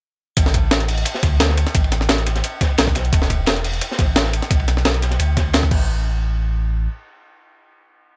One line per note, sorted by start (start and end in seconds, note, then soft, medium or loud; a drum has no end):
0.37 1.05 A1 loud
0.37 kick loud
0.37 closed hi-hat medium
0.37 ride medium
0.46 snare soft
0.54 kick medium
0.54 closed hi-hat medium
0.54 ride medium
0.71 snare loud
0.71 closed hi-hat medium
0.71 ride medium
0.80 closed hi-hat soft
0.80 ride soft
0.88 closed hi-hat medium
0.88 open hi-hat medium
0.98 closed hi-hat soft
1.05 closed hi-hat loud
1.05 ride medium
1.15 snare medium
1.23 1.65 D2 loud
1.23 kick loud
1.23 snare soft
1.23 closed hi-hat medium
1.23 ride medium
1.40 snare loud
1.40 closed hi-hat loud
1.40 ride medium
1.49 snare medium
1.57 closed hi-hat medium
1.57 ride medium
1.67 snare soft
1.67 closed hi-hat soft
1.75 2.42 A1 loud
1.75 kick loud
1.75 closed hi-hat medium
1.75 ride loud
1.84 ride soft
1.92 snare soft
1.92 closed hi-hat medium
1.92 ride medium
2.01 snare soft
2.09 snare loud
2.09 closed hi-hat medium
2.09 ride medium
2.18 closed hi-hat soft
2.26 snare soft
2.26 closed hi-hat medium
2.26 ride medium
2.36 snare soft
2.36 closed hi-hat soft
2.44 closed hi-hat medium
2.44 ride medium
2.61 kick loud
2.61 snare medium
2.61 closed hi-hat medium
2.61 ride medium
2.78 3.11 B1 loud
2.78 snare loud
2.78 closed hi-hat loud
2.78 ride medium
2.87 kick medium
2.87 snare soft
2.95 snare soft
2.95 closed hi-hat medium
2.95 ride medium
3.05 closed hi-hat soft
3.13 3.80 E1 loud
3.13 kick loud
3.13 closed hi-hat medium
3.13 ride loud
3.22 snare soft
3.30 kick medium
3.30 closed hi-hat medium
3.30 ride medium
3.46 snare loud
3.46 closed hi-hat medium
3.46 ride medium
3.56 closed hi-hat soft
3.56 ride soft
3.64 closed hi-hat medium
3.64 open hi-hat medium
3.73 closed hi-hat soft
3.81 closed hi-hat medium
3.81 ride medium
3.91 snare medium
3.98 4.41 A1 loud
3.98 kick loud
3.98 snare soft
3.98 closed hi-hat medium
3.98 ride medium
4.16 snare loud
4.16 closed hi-hat medium
4.16 ride medium
4.25 snare medium
4.33 closed hi-hat medium
4.33 ride medium
4.42 snare soft
4.42 closed hi-hat soft
4.50 5.18 B1 loud
4.50 kick loud
4.50 closed hi-hat medium
4.50 ride medium
4.60 ride soft
4.68 snare soft
4.68 closed hi-hat medium
4.68 ride medium
4.77 snare soft
4.85 snare loud
4.85 closed hi-hat medium
4.85 ride medium
4.94 closed hi-hat soft
5.02 snare soft
5.02 closed hi-hat medium
5.02 ride medium
5.11 snare soft
5.11 closed hi-hat soft
5.19 5.71 D2 medium
5.19 closed hi-hat medium
5.19 ride medium
5.37 kick loud
5.37 snare soft
5.37 closed hi-hat medium
5.37 ride medium
5.53 snare loud
5.53 closed hi-hat loud
5.53 ride medium
5.63 kick medium
5.63 snare soft
5.71 6.88 A1 medium
5.71 kick loud
5.71 crash medium